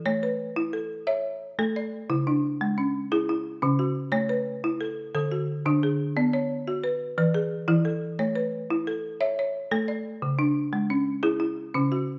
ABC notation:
X:1
M:12/8
L:1/8
Q:3/8=118
K:A
V:1 name="Marimba"
[Ac] B3 A2 e3 A d2 | E D3 C2 G E2 C F2 | c B3 A2 A F2 D G2 | d c3 B2 B G2 E A2 |
c B3 A2 e c2 A d2- | d D3 C2 G E2 C F2 |]
V:2 name="Marimba"
A,2 z E2 z c2 z A,2 z | C,2 z G,2 z E2 z C,2 z | A,2 z E2 z D,2 z D,2 z | B,2 z F2 z E,2 z E,2 z |
A,2 z E2 z c2 z A,2 z | C,2 z G,2 z E2 z C,2 z |]